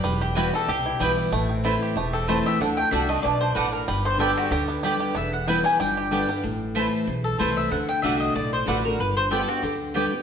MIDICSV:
0, 0, Header, 1, 6, 480
1, 0, Start_track
1, 0, Key_signature, 1, "major"
1, 0, Tempo, 319319
1, 69, Time_signature, 4, 2, 24, 8
1, 15369, End_track
2, 0, Start_track
2, 0, Title_t, "Mandolin"
2, 0, Program_c, 0, 25
2, 53, Note_on_c, 0, 71, 89
2, 311, Note_off_c, 0, 71, 0
2, 330, Note_on_c, 0, 67, 82
2, 543, Note_off_c, 0, 67, 0
2, 549, Note_on_c, 0, 66, 85
2, 800, Note_off_c, 0, 66, 0
2, 827, Note_on_c, 0, 69, 110
2, 1035, Note_off_c, 0, 69, 0
2, 1039, Note_on_c, 0, 67, 92
2, 1723, Note_off_c, 0, 67, 0
2, 3207, Note_on_c, 0, 69, 83
2, 3426, Note_off_c, 0, 69, 0
2, 3445, Note_on_c, 0, 72, 78
2, 3691, Note_off_c, 0, 72, 0
2, 3701, Note_on_c, 0, 76, 88
2, 3914, Note_off_c, 0, 76, 0
2, 3925, Note_on_c, 0, 78, 75
2, 4158, Note_off_c, 0, 78, 0
2, 4164, Note_on_c, 0, 79, 100
2, 4372, Note_off_c, 0, 79, 0
2, 4378, Note_on_c, 0, 76, 83
2, 4637, Note_off_c, 0, 76, 0
2, 4642, Note_on_c, 0, 75, 89
2, 4843, Note_off_c, 0, 75, 0
2, 4849, Note_on_c, 0, 74, 84
2, 5113, Note_off_c, 0, 74, 0
2, 5119, Note_on_c, 0, 72, 91
2, 5329, Note_off_c, 0, 72, 0
2, 5335, Note_on_c, 0, 71, 78
2, 5592, Note_off_c, 0, 71, 0
2, 5598, Note_on_c, 0, 70, 81
2, 5822, Note_off_c, 0, 70, 0
2, 5843, Note_on_c, 0, 71, 88
2, 6089, Note_off_c, 0, 71, 0
2, 6095, Note_on_c, 0, 72, 102
2, 6304, Note_off_c, 0, 72, 0
2, 6310, Note_on_c, 0, 69, 78
2, 6564, Note_off_c, 0, 69, 0
2, 6575, Note_on_c, 0, 66, 86
2, 6782, Note_off_c, 0, 66, 0
2, 6788, Note_on_c, 0, 67, 83
2, 6945, Note_off_c, 0, 67, 0
2, 7767, Note_on_c, 0, 76, 77
2, 8008, Note_off_c, 0, 76, 0
2, 8014, Note_on_c, 0, 78, 83
2, 8226, Note_off_c, 0, 78, 0
2, 8232, Note_on_c, 0, 79, 90
2, 8485, Note_off_c, 0, 79, 0
2, 8492, Note_on_c, 0, 80, 113
2, 8710, Note_off_c, 0, 80, 0
2, 8718, Note_on_c, 0, 79, 78
2, 9507, Note_off_c, 0, 79, 0
2, 10885, Note_on_c, 0, 69, 80
2, 11105, Note_off_c, 0, 69, 0
2, 11112, Note_on_c, 0, 72, 69
2, 11364, Note_off_c, 0, 72, 0
2, 11378, Note_on_c, 0, 76, 83
2, 11591, Note_off_c, 0, 76, 0
2, 11598, Note_on_c, 0, 78, 83
2, 11846, Note_off_c, 0, 78, 0
2, 11855, Note_on_c, 0, 79, 108
2, 12052, Note_off_c, 0, 79, 0
2, 12059, Note_on_c, 0, 76, 83
2, 12316, Note_off_c, 0, 76, 0
2, 12325, Note_on_c, 0, 75, 87
2, 12544, Note_off_c, 0, 75, 0
2, 12560, Note_on_c, 0, 74, 93
2, 12807, Note_off_c, 0, 74, 0
2, 12820, Note_on_c, 0, 72, 94
2, 13032, Note_off_c, 0, 72, 0
2, 13047, Note_on_c, 0, 71, 76
2, 13290, Note_off_c, 0, 71, 0
2, 13302, Note_on_c, 0, 70, 86
2, 13512, Note_off_c, 0, 70, 0
2, 13530, Note_on_c, 0, 71, 82
2, 13771, Note_off_c, 0, 71, 0
2, 13781, Note_on_c, 0, 72, 106
2, 13991, Note_off_c, 0, 72, 0
2, 13997, Note_on_c, 0, 69, 75
2, 14244, Note_off_c, 0, 69, 0
2, 14254, Note_on_c, 0, 66, 83
2, 14465, Note_off_c, 0, 66, 0
2, 14471, Note_on_c, 0, 67, 95
2, 14626, Note_off_c, 0, 67, 0
2, 15369, End_track
3, 0, Start_track
3, 0, Title_t, "Mandolin"
3, 0, Program_c, 1, 25
3, 529, Note_on_c, 1, 59, 78
3, 537, Note_on_c, 1, 64, 78
3, 547, Note_on_c, 1, 71, 93
3, 548, Note_on_c, 1, 79, 94
3, 684, Note_off_c, 1, 59, 0
3, 688, Note_off_c, 1, 64, 0
3, 693, Note_off_c, 1, 71, 0
3, 694, Note_off_c, 1, 79, 0
3, 1509, Note_on_c, 1, 59, 79
3, 1516, Note_on_c, 1, 64, 89
3, 1521, Note_on_c, 1, 71, 87
3, 1533, Note_on_c, 1, 79, 97
3, 1655, Note_off_c, 1, 59, 0
3, 1659, Note_off_c, 1, 64, 0
3, 1661, Note_off_c, 1, 71, 0
3, 1668, Note_off_c, 1, 79, 0
3, 2466, Note_on_c, 1, 57, 69
3, 2475, Note_on_c, 1, 64, 85
3, 2481, Note_on_c, 1, 72, 79
3, 2481, Note_on_c, 1, 81, 83
3, 2615, Note_off_c, 1, 57, 0
3, 2619, Note_off_c, 1, 64, 0
3, 2622, Note_off_c, 1, 72, 0
3, 2622, Note_off_c, 1, 81, 0
3, 3422, Note_on_c, 1, 57, 82
3, 3426, Note_on_c, 1, 64, 75
3, 3435, Note_on_c, 1, 72, 89
3, 3442, Note_on_c, 1, 81, 98
3, 3574, Note_off_c, 1, 57, 0
3, 3576, Note_off_c, 1, 64, 0
3, 3580, Note_off_c, 1, 72, 0
3, 3583, Note_off_c, 1, 81, 0
3, 4385, Note_on_c, 1, 57, 76
3, 4394, Note_on_c, 1, 66, 87
3, 4401, Note_on_c, 1, 74, 80
3, 4402, Note_on_c, 1, 78, 81
3, 4536, Note_off_c, 1, 57, 0
3, 4540, Note_off_c, 1, 66, 0
3, 4543, Note_off_c, 1, 74, 0
3, 4544, Note_off_c, 1, 78, 0
3, 5348, Note_on_c, 1, 57, 81
3, 5357, Note_on_c, 1, 66, 94
3, 5358, Note_on_c, 1, 74, 86
3, 5363, Note_on_c, 1, 78, 96
3, 5497, Note_off_c, 1, 57, 0
3, 5502, Note_off_c, 1, 66, 0
3, 5502, Note_off_c, 1, 74, 0
3, 5505, Note_off_c, 1, 78, 0
3, 6302, Note_on_c, 1, 59, 80
3, 6316, Note_on_c, 1, 67, 85
3, 6320, Note_on_c, 1, 74, 83
3, 6323, Note_on_c, 1, 79, 94
3, 6455, Note_off_c, 1, 59, 0
3, 6462, Note_off_c, 1, 67, 0
3, 6463, Note_off_c, 1, 74, 0
3, 6465, Note_off_c, 1, 79, 0
3, 7268, Note_on_c, 1, 59, 79
3, 7278, Note_on_c, 1, 67, 82
3, 7280, Note_on_c, 1, 74, 86
3, 7286, Note_on_c, 1, 79, 89
3, 7418, Note_off_c, 1, 59, 0
3, 7423, Note_off_c, 1, 67, 0
3, 7423, Note_off_c, 1, 74, 0
3, 7427, Note_off_c, 1, 79, 0
3, 8235, Note_on_c, 1, 59, 89
3, 8246, Note_on_c, 1, 64, 82
3, 8247, Note_on_c, 1, 71, 81
3, 8253, Note_on_c, 1, 79, 77
3, 8381, Note_off_c, 1, 59, 0
3, 8386, Note_off_c, 1, 64, 0
3, 8387, Note_off_c, 1, 71, 0
3, 8390, Note_off_c, 1, 79, 0
3, 9191, Note_on_c, 1, 59, 81
3, 9199, Note_on_c, 1, 74, 84
3, 9202, Note_on_c, 1, 67, 79
3, 9212, Note_on_c, 1, 79, 83
3, 9339, Note_off_c, 1, 59, 0
3, 9343, Note_off_c, 1, 74, 0
3, 9344, Note_off_c, 1, 67, 0
3, 9349, Note_off_c, 1, 79, 0
3, 10145, Note_on_c, 1, 57, 88
3, 10154, Note_on_c, 1, 64, 87
3, 10157, Note_on_c, 1, 72, 89
3, 10164, Note_on_c, 1, 81, 93
3, 10295, Note_off_c, 1, 57, 0
3, 10300, Note_off_c, 1, 64, 0
3, 10302, Note_off_c, 1, 72, 0
3, 10305, Note_off_c, 1, 81, 0
3, 11118, Note_on_c, 1, 57, 84
3, 11121, Note_on_c, 1, 64, 91
3, 11123, Note_on_c, 1, 72, 90
3, 11133, Note_on_c, 1, 81, 104
3, 11262, Note_off_c, 1, 57, 0
3, 11263, Note_off_c, 1, 64, 0
3, 11264, Note_off_c, 1, 72, 0
3, 11269, Note_off_c, 1, 81, 0
3, 12074, Note_on_c, 1, 57, 81
3, 12082, Note_on_c, 1, 66, 90
3, 12088, Note_on_c, 1, 74, 78
3, 12092, Note_on_c, 1, 78, 105
3, 12219, Note_off_c, 1, 57, 0
3, 12223, Note_off_c, 1, 66, 0
3, 12226, Note_off_c, 1, 74, 0
3, 12228, Note_off_c, 1, 78, 0
3, 13037, Note_on_c, 1, 57, 81
3, 13038, Note_on_c, 1, 66, 86
3, 13042, Note_on_c, 1, 74, 91
3, 13055, Note_on_c, 1, 78, 91
3, 13180, Note_off_c, 1, 57, 0
3, 13180, Note_off_c, 1, 66, 0
3, 13182, Note_off_c, 1, 74, 0
3, 13188, Note_off_c, 1, 78, 0
3, 13988, Note_on_c, 1, 59, 77
3, 13999, Note_on_c, 1, 67, 84
3, 14000, Note_on_c, 1, 74, 95
3, 14014, Note_on_c, 1, 79, 89
3, 14134, Note_off_c, 1, 59, 0
3, 14140, Note_off_c, 1, 67, 0
3, 14140, Note_off_c, 1, 74, 0
3, 14147, Note_off_c, 1, 79, 0
3, 14943, Note_on_c, 1, 59, 78
3, 14948, Note_on_c, 1, 67, 78
3, 14957, Note_on_c, 1, 74, 80
3, 14959, Note_on_c, 1, 79, 100
3, 15091, Note_off_c, 1, 59, 0
3, 15093, Note_off_c, 1, 67, 0
3, 15098, Note_off_c, 1, 74, 0
3, 15099, Note_off_c, 1, 79, 0
3, 15369, End_track
4, 0, Start_track
4, 0, Title_t, "Five-string banjo"
4, 0, Program_c, 2, 105
4, 56, Note_on_c, 2, 55, 74
4, 320, Note_on_c, 2, 67, 54
4, 549, Note_on_c, 2, 64, 52
4, 750, Note_off_c, 2, 55, 0
4, 805, Note_on_c, 2, 55, 77
4, 983, Note_off_c, 2, 67, 0
4, 1030, Note_on_c, 2, 67, 67
4, 1237, Note_off_c, 2, 64, 0
4, 1289, Note_on_c, 2, 64, 60
4, 1467, Note_off_c, 2, 55, 0
4, 1507, Note_on_c, 2, 55, 68
4, 1718, Note_off_c, 2, 67, 0
4, 1762, Note_on_c, 2, 59, 47
4, 1949, Note_off_c, 2, 64, 0
4, 1986, Note_off_c, 2, 55, 0
4, 1989, Note_off_c, 2, 59, 0
4, 1992, Note_on_c, 2, 57, 80
4, 2245, Note_on_c, 2, 60, 56
4, 2475, Note_on_c, 2, 64, 53
4, 2741, Note_on_c, 2, 67, 57
4, 2786, Note_off_c, 2, 57, 0
4, 2907, Note_off_c, 2, 60, 0
4, 2957, Note_on_c, 2, 57, 72
4, 3162, Note_off_c, 2, 64, 0
4, 3206, Note_on_c, 2, 60, 65
4, 3395, Note_off_c, 2, 67, 0
4, 3425, Note_off_c, 2, 57, 0
4, 3443, Note_on_c, 2, 57, 71
4, 3702, Note_on_c, 2, 67, 51
4, 3869, Note_off_c, 2, 60, 0
4, 3920, Note_off_c, 2, 57, 0
4, 3921, Note_off_c, 2, 67, 0
4, 3933, Note_on_c, 2, 62, 69
4, 4182, Note_on_c, 2, 57, 50
4, 4398, Note_off_c, 2, 62, 0
4, 4398, Note_on_c, 2, 62, 56
4, 4640, Note_off_c, 2, 57, 0
4, 4658, Note_on_c, 2, 57, 73
4, 4861, Note_off_c, 2, 62, 0
4, 4879, Note_on_c, 2, 62, 76
4, 5107, Note_off_c, 2, 62, 0
4, 5125, Note_on_c, 2, 62, 62
4, 5315, Note_off_c, 2, 57, 0
4, 5336, Note_off_c, 2, 62, 0
4, 5354, Note_on_c, 2, 62, 58
4, 5587, Note_off_c, 2, 62, 0
4, 5605, Note_on_c, 2, 62, 54
4, 5831, Note_on_c, 2, 55, 80
4, 5833, Note_off_c, 2, 62, 0
4, 6090, Note_on_c, 2, 59, 58
4, 6309, Note_on_c, 2, 62, 48
4, 6579, Note_on_c, 2, 67, 64
4, 6751, Note_off_c, 2, 59, 0
4, 6786, Note_off_c, 2, 55, 0
4, 6792, Note_on_c, 2, 55, 76
4, 7000, Note_off_c, 2, 62, 0
4, 7038, Note_on_c, 2, 59, 62
4, 7235, Note_off_c, 2, 67, 0
4, 7244, Note_off_c, 2, 55, 0
4, 7262, Note_on_c, 2, 55, 70
4, 7518, Note_on_c, 2, 67, 58
4, 7705, Note_off_c, 2, 59, 0
4, 7738, Note_on_c, 2, 59, 72
4, 7749, Note_off_c, 2, 67, 0
4, 7750, Note_off_c, 2, 55, 0
4, 8233, Note_on_c, 2, 64, 52
4, 8434, Note_off_c, 2, 59, 0
4, 8478, Note_on_c, 2, 55, 66
4, 8699, Note_off_c, 2, 55, 0
4, 8716, Note_off_c, 2, 64, 0
4, 8717, Note_on_c, 2, 55, 86
4, 8980, Note_on_c, 2, 67, 60
4, 9196, Note_on_c, 2, 62, 55
4, 9403, Note_off_c, 2, 55, 0
4, 9452, Note_on_c, 2, 55, 65
4, 9636, Note_off_c, 2, 67, 0
4, 9676, Note_off_c, 2, 55, 0
4, 9677, Note_off_c, 2, 62, 0
4, 15369, End_track
5, 0, Start_track
5, 0, Title_t, "Steel-string acoustic guitar"
5, 0, Program_c, 3, 25
5, 71, Note_on_c, 3, 40, 94
5, 546, Note_on_c, 3, 52, 86
5, 549, Note_on_c, 3, 55, 93
5, 569, Note_on_c, 3, 59, 104
5, 576, Note_on_c, 3, 64, 92
5, 782, Note_off_c, 3, 64, 0
5, 796, Note_off_c, 3, 52, 0
5, 797, Note_off_c, 3, 55, 0
5, 800, Note_on_c, 3, 64, 60
5, 807, Note_off_c, 3, 59, 0
5, 837, Note_on_c, 3, 59, 42
5, 988, Note_off_c, 3, 40, 0
5, 1018, Note_off_c, 3, 64, 0
5, 1026, Note_on_c, 3, 47, 89
5, 1037, Note_off_c, 3, 59, 0
5, 1495, Note_on_c, 3, 52, 94
5, 1516, Note_on_c, 3, 55, 87
5, 1526, Note_on_c, 3, 59, 91
5, 1530, Note_on_c, 3, 64, 101
5, 1946, Note_off_c, 3, 47, 0
5, 1962, Note_off_c, 3, 52, 0
5, 1973, Note_off_c, 3, 55, 0
5, 1978, Note_off_c, 3, 59, 0
5, 1980, Note_off_c, 3, 64, 0
5, 1992, Note_on_c, 3, 45, 100
5, 2459, Note_on_c, 3, 52, 99
5, 2467, Note_on_c, 3, 57, 84
5, 2472, Note_on_c, 3, 60, 99
5, 2488, Note_on_c, 3, 64, 100
5, 2910, Note_off_c, 3, 45, 0
5, 2925, Note_off_c, 3, 52, 0
5, 2929, Note_off_c, 3, 57, 0
5, 2932, Note_off_c, 3, 60, 0
5, 2940, Note_off_c, 3, 64, 0
5, 2940, Note_on_c, 3, 40, 83
5, 3432, Note_on_c, 3, 52, 85
5, 3438, Note_on_c, 3, 57, 104
5, 3454, Note_on_c, 3, 60, 104
5, 3458, Note_on_c, 3, 64, 96
5, 3864, Note_off_c, 3, 40, 0
5, 3892, Note_off_c, 3, 52, 0
5, 3895, Note_off_c, 3, 57, 0
5, 3903, Note_off_c, 3, 60, 0
5, 3905, Note_off_c, 3, 64, 0
5, 3914, Note_on_c, 3, 50, 95
5, 4353, Note_off_c, 3, 50, 0
5, 4371, Note_on_c, 3, 50, 82
5, 4383, Note_on_c, 3, 57, 82
5, 4398, Note_on_c, 3, 62, 97
5, 4403, Note_on_c, 3, 66, 95
5, 4615, Note_off_c, 3, 66, 0
5, 4631, Note_off_c, 3, 50, 0
5, 4633, Note_on_c, 3, 66, 52
5, 4638, Note_off_c, 3, 57, 0
5, 4645, Note_off_c, 3, 62, 0
5, 4668, Note_on_c, 3, 62, 48
5, 4853, Note_on_c, 3, 47, 90
5, 4858, Note_off_c, 3, 66, 0
5, 4875, Note_off_c, 3, 62, 0
5, 5323, Note_off_c, 3, 47, 0
5, 5338, Note_on_c, 3, 45, 100
5, 5806, Note_off_c, 3, 45, 0
5, 5830, Note_on_c, 3, 43, 95
5, 6283, Note_on_c, 3, 50, 94
5, 6294, Note_on_c, 3, 55, 93
5, 6307, Note_on_c, 3, 59, 94
5, 6311, Note_on_c, 3, 67, 93
5, 6750, Note_off_c, 3, 43, 0
5, 6758, Note_off_c, 3, 50, 0
5, 6764, Note_off_c, 3, 55, 0
5, 6771, Note_off_c, 3, 59, 0
5, 6773, Note_off_c, 3, 67, 0
5, 6779, Note_on_c, 3, 50, 92
5, 7252, Note_off_c, 3, 50, 0
5, 7271, Note_on_c, 3, 50, 92
5, 7278, Note_on_c, 3, 55, 99
5, 7294, Note_on_c, 3, 59, 101
5, 7295, Note_on_c, 3, 67, 100
5, 7732, Note_off_c, 3, 50, 0
5, 7736, Note_off_c, 3, 55, 0
5, 7744, Note_off_c, 3, 59, 0
5, 7745, Note_off_c, 3, 67, 0
5, 7750, Note_on_c, 3, 40, 85
5, 8226, Note_on_c, 3, 52, 92
5, 8243, Note_on_c, 3, 55, 94
5, 8256, Note_on_c, 3, 59, 99
5, 8262, Note_on_c, 3, 64, 99
5, 8470, Note_off_c, 3, 64, 0
5, 8479, Note_off_c, 3, 52, 0
5, 8488, Note_off_c, 3, 55, 0
5, 8488, Note_on_c, 3, 64, 58
5, 8494, Note_off_c, 3, 59, 0
5, 8518, Note_on_c, 3, 59, 44
5, 8670, Note_off_c, 3, 40, 0
5, 8706, Note_off_c, 3, 64, 0
5, 8717, Note_on_c, 3, 43, 91
5, 8721, Note_off_c, 3, 59, 0
5, 9186, Note_on_c, 3, 50, 90
5, 9200, Note_on_c, 3, 55, 91
5, 9207, Note_on_c, 3, 59, 101
5, 9219, Note_on_c, 3, 67, 102
5, 9435, Note_off_c, 3, 67, 0
5, 9439, Note_off_c, 3, 50, 0
5, 9446, Note_off_c, 3, 55, 0
5, 9450, Note_off_c, 3, 59, 0
5, 9453, Note_on_c, 3, 67, 59
5, 9490, Note_on_c, 3, 59, 50
5, 9633, Note_off_c, 3, 43, 0
5, 9668, Note_off_c, 3, 67, 0
5, 9673, Note_on_c, 3, 45, 98
5, 9686, Note_off_c, 3, 59, 0
5, 10145, Note_on_c, 3, 52, 85
5, 10164, Note_on_c, 3, 57, 85
5, 10172, Note_on_c, 3, 60, 98
5, 10175, Note_on_c, 3, 64, 93
5, 10590, Note_off_c, 3, 45, 0
5, 10609, Note_off_c, 3, 52, 0
5, 10618, Note_off_c, 3, 57, 0
5, 10622, Note_off_c, 3, 60, 0
5, 10624, Note_off_c, 3, 64, 0
5, 10630, Note_on_c, 3, 40, 88
5, 11101, Note_on_c, 3, 52, 89
5, 11108, Note_on_c, 3, 57, 100
5, 11130, Note_on_c, 3, 60, 105
5, 11130, Note_on_c, 3, 64, 113
5, 11548, Note_off_c, 3, 40, 0
5, 11566, Note_off_c, 3, 52, 0
5, 11570, Note_off_c, 3, 57, 0
5, 11581, Note_off_c, 3, 60, 0
5, 11581, Note_off_c, 3, 64, 0
5, 11598, Note_on_c, 3, 50, 95
5, 12050, Note_off_c, 3, 50, 0
5, 12068, Note_on_c, 3, 50, 84
5, 12080, Note_on_c, 3, 57, 89
5, 12093, Note_on_c, 3, 62, 103
5, 12105, Note_on_c, 3, 66, 98
5, 12529, Note_off_c, 3, 50, 0
5, 12535, Note_off_c, 3, 57, 0
5, 12541, Note_off_c, 3, 62, 0
5, 12547, Note_off_c, 3, 66, 0
5, 12558, Note_on_c, 3, 45, 99
5, 13014, Note_on_c, 3, 50, 99
5, 13032, Note_on_c, 3, 57, 106
5, 13037, Note_on_c, 3, 62, 97
5, 13050, Note_on_c, 3, 66, 108
5, 13271, Note_off_c, 3, 50, 0
5, 13271, Note_off_c, 3, 66, 0
5, 13280, Note_off_c, 3, 57, 0
5, 13282, Note_off_c, 3, 62, 0
5, 13289, Note_on_c, 3, 66, 69
5, 13323, Note_on_c, 3, 62, 60
5, 13470, Note_off_c, 3, 45, 0
5, 13503, Note_off_c, 3, 66, 0
5, 13521, Note_off_c, 3, 62, 0
5, 13532, Note_on_c, 3, 43, 106
5, 13993, Note_on_c, 3, 50, 100
5, 14005, Note_on_c, 3, 55, 87
5, 14022, Note_on_c, 3, 59, 116
5, 14026, Note_on_c, 3, 67, 114
5, 14226, Note_off_c, 3, 67, 0
5, 14239, Note_off_c, 3, 50, 0
5, 14244, Note_on_c, 3, 67, 55
5, 14245, Note_off_c, 3, 55, 0
5, 14254, Note_off_c, 3, 59, 0
5, 14283, Note_on_c, 3, 59, 53
5, 14436, Note_off_c, 3, 43, 0
5, 14460, Note_off_c, 3, 67, 0
5, 14479, Note_off_c, 3, 59, 0
5, 14482, Note_on_c, 3, 50, 96
5, 14940, Note_off_c, 3, 50, 0
5, 14958, Note_on_c, 3, 50, 97
5, 14965, Note_on_c, 3, 55, 91
5, 14977, Note_on_c, 3, 59, 109
5, 14985, Note_on_c, 3, 67, 109
5, 15194, Note_off_c, 3, 67, 0
5, 15201, Note_off_c, 3, 50, 0
5, 15205, Note_off_c, 3, 55, 0
5, 15210, Note_off_c, 3, 59, 0
5, 15213, Note_on_c, 3, 67, 68
5, 15240, Note_on_c, 3, 59, 53
5, 15369, Note_off_c, 3, 59, 0
5, 15369, Note_off_c, 3, 67, 0
5, 15369, End_track
6, 0, Start_track
6, 0, Title_t, "Upright bass"
6, 0, Program_c, 4, 32
6, 55, Note_on_c, 4, 28, 99
6, 716, Note_off_c, 4, 28, 0
6, 1014, Note_on_c, 4, 36, 83
6, 1431, Note_off_c, 4, 36, 0
6, 1507, Note_on_c, 4, 35, 84
6, 1918, Note_off_c, 4, 35, 0
6, 1986, Note_on_c, 4, 33, 100
6, 2644, Note_off_c, 4, 33, 0
6, 2940, Note_on_c, 4, 28, 89
6, 3601, Note_off_c, 4, 28, 0
6, 3917, Note_on_c, 4, 38, 91
6, 4244, Note_off_c, 4, 38, 0
6, 4395, Note_on_c, 4, 36, 90
6, 4804, Note_off_c, 4, 36, 0
6, 4882, Note_on_c, 4, 35, 91
6, 5288, Note_off_c, 4, 35, 0
6, 5352, Note_on_c, 4, 33, 84
6, 5763, Note_off_c, 4, 33, 0
6, 5836, Note_on_c, 4, 31, 97
6, 6492, Note_off_c, 4, 31, 0
6, 6781, Note_on_c, 4, 38, 93
6, 7442, Note_off_c, 4, 38, 0
6, 7737, Note_on_c, 4, 28, 86
6, 8399, Note_off_c, 4, 28, 0
6, 8716, Note_on_c, 4, 31, 96
6, 9371, Note_off_c, 4, 31, 0
6, 9682, Note_on_c, 4, 33, 89
6, 10335, Note_off_c, 4, 33, 0
6, 10635, Note_on_c, 4, 35, 91
6, 11043, Note_off_c, 4, 35, 0
6, 11121, Note_on_c, 4, 36, 90
6, 11526, Note_off_c, 4, 36, 0
6, 11598, Note_on_c, 4, 38, 99
6, 11924, Note_off_c, 4, 38, 0
6, 12078, Note_on_c, 4, 36, 90
6, 12484, Note_off_c, 4, 36, 0
6, 12555, Note_on_c, 4, 35, 81
6, 12962, Note_off_c, 4, 35, 0
6, 13043, Note_on_c, 4, 33, 84
6, 13446, Note_off_c, 4, 33, 0
6, 13514, Note_on_c, 4, 31, 101
6, 14167, Note_off_c, 4, 31, 0
6, 14475, Note_on_c, 4, 38, 83
6, 15127, Note_off_c, 4, 38, 0
6, 15369, End_track
0, 0, End_of_file